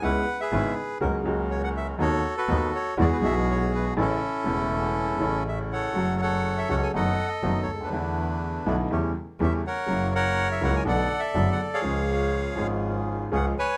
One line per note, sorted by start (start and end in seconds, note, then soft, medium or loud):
0.02 0.23 C#2 medium
0.02 0.24 C#2 medium
0.02 0.23 C#3 medium
0.02 0.23 G#3 medium
0.02 0.24 B3 medium
0.02 0.24 C#4 medium
0.02 0.24 E4 medium
0.02 0.24 B4 medium
0.02 0.40 B4 medium
0.02 0.41 F#5 medium
0.40 0.98 G#4 soft
0.40 0.98 B4 soft
0.40 0.74 E5 medium
0.52 0.73 G#1 medium
0.52 0.73 G#2 medium
0.52 0.73 C#3 medium
0.52 0.73 G#3 medium
0.52 0.73 B3 medium
0.52 0.73 C#4 medium
0.52 0.73 E4 medium
0.52 0.73 B4 medium
1.01 1.22 C#2 medium
1.01 1.22 C#3 medium
1.01 1.22 F#3 medium
1.01 1.22 A#3 medium
1.01 1.22 C#4 medium
1.01 1.22 F#4 medium
1.01 1.22 A#4 medium
1.24 1.96 C#2 medium
1.24 1.96 C#3 medium
1.24 1.95 F#3 medium
1.24 1.96 A#3 medium
1.24 1.96 C#4 medium
1.24 1.96 F#4 medium
1.24 1.96 A#4 medium
1.28 1.97 F#4 medium
1.51 1.62 C#5 medium
1.64 1.69 F#5 medium
1.77 1.87 E5 medium
1.98 2.20 D#2 medium
1.98 2.20 D#3 medium
1.98 2.20 A3 medium
1.98 2.20 B3 medium
1.98 2.20 D#4 medium
1.98 2.20 F#4 medium
1.98 2.36 F#4 medium
1.98 2.20 A4 medium
1.98 2.95 A4 medium
1.98 2.34 C#5 medium
2.38 2.94 F#4 medium
2.38 2.71 B4 medium
2.48 2.69 D#2 medium
2.48 2.69 D#3 medium
2.48 2.69 A3 medium
2.48 2.69 B3 medium
2.48 2.69 D#4 medium
2.48 2.69 F#4 medium
2.48 2.69 A4 medium
2.75 2.97 C#5 medium
2.97 3.18 E2 medium
2.97 3.18 E2 loud
2.97 3.18 E3 medium
2.97 3.18 G#3 medium
2.97 3.18 B3 medium
2.97 3.19 E4 medium
2.97 3.19 F#4 medium
2.97 3.94 F#4 medium
2.97 3.94 G#4 medium
2.97 3.05 D5 medium
3.13 3.18 B4 medium
3.21 3.93 B1 loud
3.21 3.93 B1 medium
3.21 3.93 B2 medium
3.21 3.92 E3 medium
3.21 3.93 G#3 medium
3.21 3.93 B3 medium
3.21 3.93 E4 medium
3.21 3.93 F#4 medium
3.21 3.94 F#4 medium
3.21 3.35 E5 medium
3.51 3.72 C#5 medium
3.75 3.85 B4 medium
3.96 4.17 A1 medium
3.96 4.17 A2 medium
3.96 4.17 C#3 medium
3.96 4.17 E3 medium
3.96 4.17 A3 medium
3.96 4.18 C#4 medium
3.96 4.17 E4 medium
3.96 4.18 E4 medium
3.96 5.43 E4 medium
4.01 5.44 C#4 medium
4.01 5.44 A4 medium
4.44 5.17 E1 medium
4.44 5.17 E2 medium
4.44 5.16 C#3 medium
4.44 5.16 E3 medium
4.44 5.17 A3 medium
4.44 5.17 C#4 medium
4.44 5.17 E4 medium
4.44 5.18 E4 medium
5.19 5.92 A1 medium
5.19 5.92 A2 medium
5.19 5.91 C#3 medium
5.19 5.91 E3 medium
5.19 5.92 A3 medium
5.19 5.92 C#4 medium
5.19 5.92 E4 medium
5.23 5.93 E4 medium
5.48 5.59 E5 medium
5.72 6.21 A4 medium
5.72 6.21 C#5 medium
5.72 6.17 F#5 medium
5.93 6.66 F#1 medium
5.93 6.66 F#2 medium
5.93 6.65 C#3 medium
5.93 6.66 F#3 medium
5.93 6.66 A3 medium
5.93 6.66 C#4 medium
5.93 6.66 F#4 medium
5.98 6.67 F#4 medium
6.22 6.92 A4 medium
6.22 6.92 C#5 medium
6.22 6.59 F#5 medium
6.58 6.69 E5 medium
6.69 6.90 C#2 medium
6.69 6.90 C#3 medium
6.69 6.90 F#3 medium
6.69 6.90 A3 medium
6.69 6.91 C#4 medium
6.69 6.90 F#4 medium
6.69 6.91 F#4 medium
6.69 6.76 F#5 medium
6.83 6.88 G#5 medium
6.94 7.15 F#1 medium
6.94 7.15 F#2 medium
6.94 7.15 D#3 medium
6.94 7.15 F#3 medium
6.94 7.15 A3 medium
6.94 7.15 B3 medium
6.94 7.15 D#4 medium
6.94 7.15 F#4 medium
6.94 7.90 A4 medium
6.94 7.27 D#5 medium
6.94 7.29 F#5 medium
7.28 7.62 D#5 medium
7.43 7.64 F#1 medium
7.43 7.64 F#2 medium
7.43 7.64 D#3 medium
7.43 7.64 F#3 medium
7.43 7.64 A3 medium
7.43 7.64 B3 medium
7.43 7.64 D#4 medium
7.43 7.64 F#4 medium
7.63 7.71 C#5 medium
7.68 7.92 D2 medium
7.74 7.80 C#2 soft
7.80 7.87 D2 medium
7.80 8.76 D4 soft
7.80 8.76 B4 medium
7.86 7.93 D#2 medium
7.91 8.63 E2 medium
7.91 8.62 D3 medium
7.91 8.63 E3 medium
7.91 8.63 A3 medium
7.91 8.63 B3 medium
7.91 8.63 D4 medium
7.91 8.63 E4 medium
7.95 8.64 E4 medium
8.66 8.87 B1 medium
8.66 8.87 B2 medium
8.66 8.87 D3 medium
8.66 8.87 A3 medium
8.66 8.87 B3 medium
8.66 8.87 D4 medium
8.66 8.87 E4 medium
8.66 8.88 E4 medium
8.90 9.11 E2 medium
8.90 9.12 E2 medium
8.90 9.12 C#3 medium
8.90 9.12 E3 medium
8.90 9.12 G3 medium
8.90 9.12 A3 medium
8.90 9.12 C#4 medium
8.90 9.12 E4 medium
8.90 9.12 G4 medium
9.40 9.61 E2 medium
9.40 9.61 C#3 medium
9.40 9.61 E3 medium
9.40 9.61 G3 medium
9.40 9.61 A3 medium
9.40 9.61 C#4 medium
9.40 9.61 E4 medium
9.40 9.61 G4 medium
9.40 9.53 E5 medium
9.67 10.14 A#4 medium
9.67 10.14 C#5 medium
9.67 10.11 F#5 medium
9.86 10.59 F#1 medium
9.86 10.58 F#2 medium
9.86 10.57 C#3 medium
9.86 10.58 F#3 medium
9.86 10.59 A#3 medium
9.86 10.59 E4 medium
9.86 10.59 F#4 medium
9.90 10.59 E4 medium
10.15 10.83 A#4 medium
10.15 10.84 C#5 medium
10.15 10.49 F#5 medium
10.52 10.62 E5 medium
10.61 10.82 C#2 medium
10.61 10.83 C#2 medium
10.61 10.82 C#3 medium
10.61 10.82 F#3 medium
10.61 10.83 A#3 medium
10.61 10.82 E4 medium
10.61 10.83 E4 medium
10.61 10.83 F#4 medium
10.61 10.76 F#5 medium
10.76 10.81 G#5 medium
10.85 11.07 B1 medium
10.85 11.06 B2 medium
10.85 11.06 D3 medium
10.85 11.06 A3 medium
10.85 11.06 B3 medium
10.85 11.07 B3 medium
10.85 11.07 D4 medium
10.85 11.07 F#4 medium
10.85 11.07 A4 medium
10.85 11.81 A4 medium
10.85 11.81 D5 medium
10.85 11.21 F#5 medium
11.20 11.50 E5 medium
11.34 11.55 F#1 medium
11.34 11.56 F#1 medium
11.34 11.56 F#2 medium
11.34 11.55 D3 medium
11.34 11.55 A3 medium
11.34 11.55 B3 medium
11.34 11.56 B3 medium
11.34 11.56 D4 medium
11.34 11.56 F#4 medium
11.34 11.56 A4 medium
11.52 11.61 F#5 medium
11.74 12.67 G#4 medium
11.74 12.67 C#5 medium
11.74 12.67 F5 medium
11.81 12.54 C#2 medium
11.81 12.54 C#3 medium
11.81 12.53 F3 medium
11.81 12.54 G#3 medium
11.81 12.54 C#4 medium
11.81 12.54 F4 medium
11.81 12.54 G#4 medium
11.86 12.55 G#4 medium
12.55 13.28 G#1 medium
12.55 13.28 G#2 medium
12.55 13.27 F3 medium
12.55 13.28 G#3 medium
12.55 13.28 C#4 medium
12.55 13.29 C#4 medium
12.55 13.28 F4 medium
12.55 13.28 G#4 medium
12.55 13.29 G#4 medium
13.32 13.53 C#2 medium
13.32 13.53 C#3 medium
13.32 13.53 F3 medium
13.32 13.53 G#3 medium
13.32 13.53 C#4 medium
13.32 13.53 F4 medium
13.32 13.53 G#4 medium
13.32 13.46 F#5 medium
13.59 13.77 B4 medium
13.59 13.77 C#5 medium
13.59 13.77 G#5 medium